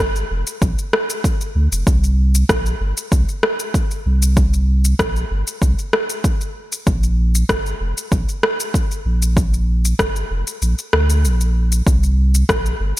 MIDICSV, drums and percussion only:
0, 0, Header, 1, 2, 480
1, 0, Start_track
1, 0, Tempo, 625000
1, 1434, Time_signature, 4, 2, 24, 8
1, 9982, End_track
2, 0, Start_track
2, 0, Title_t, "Drums"
2, 121, Note_on_c, 9, 82, 32
2, 198, Note_off_c, 9, 82, 0
2, 360, Note_on_c, 9, 82, 65
2, 437, Note_off_c, 9, 82, 0
2, 474, Note_on_c, 9, 36, 99
2, 478, Note_on_c, 9, 82, 58
2, 551, Note_off_c, 9, 36, 0
2, 554, Note_off_c, 9, 82, 0
2, 604, Note_on_c, 9, 82, 33
2, 680, Note_off_c, 9, 82, 0
2, 717, Note_on_c, 9, 37, 77
2, 793, Note_off_c, 9, 37, 0
2, 844, Note_on_c, 9, 82, 62
2, 920, Note_off_c, 9, 82, 0
2, 954, Note_on_c, 9, 36, 99
2, 958, Note_on_c, 9, 82, 57
2, 1031, Note_off_c, 9, 36, 0
2, 1035, Note_off_c, 9, 82, 0
2, 1083, Note_on_c, 9, 82, 34
2, 1160, Note_off_c, 9, 82, 0
2, 1323, Note_on_c, 9, 82, 64
2, 1400, Note_off_c, 9, 82, 0
2, 1434, Note_on_c, 9, 36, 103
2, 1437, Note_on_c, 9, 82, 51
2, 1511, Note_off_c, 9, 36, 0
2, 1514, Note_off_c, 9, 82, 0
2, 1565, Note_on_c, 9, 82, 31
2, 1641, Note_off_c, 9, 82, 0
2, 1803, Note_on_c, 9, 82, 62
2, 1880, Note_off_c, 9, 82, 0
2, 1914, Note_on_c, 9, 36, 106
2, 1916, Note_on_c, 9, 37, 73
2, 1918, Note_on_c, 9, 82, 51
2, 1991, Note_off_c, 9, 36, 0
2, 1992, Note_off_c, 9, 37, 0
2, 1995, Note_off_c, 9, 82, 0
2, 2042, Note_on_c, 9, 82, 31
2, 2119, Note_off_c, 9, 82, 0
2, 2283, Note_on_c, 9, 82, 62
2, 2360, Note_off_c, 9, 82, 0
2, 2394, Note_on_c, 9, 36, 97
2, 2399, Note_on_c, 9, 82, 55
2, 2471, Note_off_c, 9, 36, 0
2, 2475, Note_off_c, 9, 82, 0
2, 2524, Note_on_c, 9, 82, 31
2, 2601, Note_off_c, 9, 82, 0
2, 2635, Note_on_c, 9, 37, 73
2, 2712, Note_off_c, 9, 37, 0
2, 2762, Note_on_c, 9, 82, 60
2, 2839, Note_off_c, 9, 82, 0
2, 2874, Note_on_c, 9, 36, 96
2, 2879, Note_on_c, 9, 82, 51
2, 2951, Note_off_c, 9, 36, 0
2, 2955, Note_off_c, 9, 82, 0
2, 3003, Note_on_c, 9, 82, 33
2, 3080, Note_off_c, 9, 82, 0
2, 3243, Note_on_c, 9, 82, 66
2, 3320, Note_off_c, 9, 82, 0
2, 3354, Note_on_c, 9, 36, 97
2, 3356, Note_on_c, 9, 82, 51
2, 3431, Note_off_c, 9, 36, 0
2, 3433, Note_off_c, 9, 82, 0
2, 3482, Note_on_c, 9, 82, 33
2, 3559, Note_off_c, 9, 82, 0
2, 3722, Note_on_c, 9, 82, 60
2, 3799, Note_off_c, 9, 82, 0
2, 3834, Note_on_c, 9, 36, 100
2, 3836, Note_on_c, 9, 37, 70
2, 3839, Note_on_c, 9, 82, 49
2, 3911, Note_off_c, 9, 36, 0
2, 3913, Note_off_c, 9, 37, 0
2, 3915, Note_off_c, 9, 82, 0
2, 3964, Note_on_c, 9, 82, 28
2, 4041, Note_off_c, 9, 82, 0
2, 4203, Note_on_c, 9, 82, 59
2, 4280, Note_off_c, 9, 82, 0
2, 4313, Note_on_c, 9, 36, 88
2, 4318, Note_on_c, 9, 82, 53
2, 4390, Note_off_c, 9, 36, 0
2, 4395, Note_off_c, 9, 82, 0
2, 4444, Note_on_c, 9, 82, 29
2, 4521, Note_off_c, 9, 82, 0
2, 4556, Note_on_c, 9, 37, 71
2, 4633, Note_off_c, 9, 37, 0
2, 4682, Note_on_c, 9, 82, 57
2, 4759, Note_off_c, 9, 82, 0
2, 4794, Note_on_c, 9, 36, 93
2, 4796, Note_on_c, 9, 82, 48
2, 4871, Note_off_c, 9, 36, 0
2, 4873, Note_off_c, 9, 82, 0
2, 4922, Note_on_c, 9, 82, 29
2, 4999, Note_off_c, 9, 82, 0
2, 5163, Note_on_c, 9, 82, 60
2, 5240, Note_off_c, 9, 82, 0
2, 5274, Note_on_c, 9, 36, 97
2, 5276, Note_on_c, 9, 82, 49
2, 5351, Note_off_c, 9, 36, 0
2, 5353, Note_off_c, 9, 82, 0
2, 5402, Note_on_c, 9, 82, 30
2, 5479, Note_off_c, 9, 82, 0
2, 5644, Note_on_c, 9, 82, 62
2, 5720, Note_off_c, 9, 82, 0
2, 5754, Note_on_c, 9, 36, 99
2, 5756, Note_on_c, 9, 37, 75
2, 5758, Note_on_c, 9, 82, 51
2, 5831, Note_off_c, 9, 36, 0
2, 5833, Note_off_c, 9, 37, 0
2, 5835, Note_off_c, 9, 82, 0
2, 5884, Note_on_c, 9, 82, 29
2, 5961, Note_off_c, 9, 82, 0
2, 6125, Note_on_c, 9, 82, 58
2, 6202, Note_off_c, 9, 82, 0
2, 6234, Note_on_c, 9, 36, 99
2, 6238, Note_on_c, 9, 82, 53
2, 6311, Note_off_c, 9, 36, 0
2, 6315, Note_off_c, 9, 82, 0
2, 6364, Note_on_c, 9, 82, 30
2, 6441, Note_off_c, 9, 82, 0
2, 6477, Note_on_c, 9, 37, 73
2, 6553, Note_off_c, 9, 37, 0
2, 6605, Note_on_c, 9, 82, 62
2, 6682, Note_off_c, 9, 82, 0
2, 6714, Note_on_c, 9, 36, 94
2, 6721, Note_on_c, 9, 82, 50
2, 6791, Note_off_c, 9, 36, 0
2, 6797, Note_off_c, 9, 82, 0
2, 6845, Note_on_c, 9, 82, 29
2, 6922, Note_off_c, 9, 82, 0
2, 7083, Note_on_c, 9, 82, 57
2, 7160, Note_off_c, 9, 82, 0
2, 7194, Note_on_c, 9, 36, 99
2, 7199, Note_on_c, 9, 82, 49
2, 7270, Note_off_c, 9, 36, 0
2, 7276, Note_off_c, 9, 82, 0
2, 7324, Note_on_c, 9, 82, 31
2, 7401, Note_off_c, 9, 82, 0
2, 7564, Note_on_c, 9, 82, 60
2, 7641, Note_off_c, 9, 82, 0
2, 7674, Note_on_c, 9, 36, 95
2, 7675, Note_on_c, 9, 37, 74
2, 7678, Note_on_c, 9, 82, 51
2, 7750, Note_off_c, 9, 36, 0
2, 7752, Note_off_c, 9, 37, 0
2, 7754, Note_off_c, 9, 82, 0
2, 7803, Note_on_c, 9, 82, 30
2, 7880, Note_off_c, 9, 82, 0
2, 8043, Note_on_c, 9, 82, 59
2, 8120, Note_off_c, 9, 82, 0
2, 8156, Note_on_c, 9, 82, 49
2, 8233, Note_off_c, 9, 82, 0
2, 8283, Note_on_c, 9, 82, 31
2, 8360, Note_off_c, 9, 82, 0
2, 8395, Note_on_c, 9, 37, 75
2, 8472, Note_off_c, 9, 37, 0
2, 8523, Note_on_c, 9, 82, 61
2, 8600, Note_off_c, 9, 82, 0
2, 8638, Note_on_c, 9, 82, 46
2, 8715, Note_off_c, 9, 82, 0
2, 8761, Note_on_c, 9, 82, 33
2, 8838, Note_off_c, 9, 82, 0
2, 9001, Note_on_c, 9, 82, 61
2, 9078, Note_off_c, 9, 82, 0
2, 9113, Note_on_c, 9, 36, 100
2, 9117, Note_on_c, 9, 82, 55
2, 9189, Note_off_c, 9, 36, 0
2, 9194, Note_off_c, 9, 82, 0
2, 9242, Note_on_c, 9, 82, 34
2, 9319, Note_off_c, 9, 82, 0
2, 9482, Note_on_c, 9, 82, 58
2, 9559, Note_off_c, 9, 82, 0
2, 9593, Note_on_c, 9, 36, 105
2, 9595, Note_on_c, 9, 37, 75
2, 9597, Note_on_c, 9, 82, 54
2, 9670, Note_off_c, 9, 36, 0
2, 9672, Note_off_c, 9, 37, 0
2, 9674, Note_off_c, 9, 82, 0
2, 9722, Note_on_c, 9, 82, 31
2, 9799, Note_off_c, 9, 82, 0
2, 9982, End_track
0, 0, End_of_file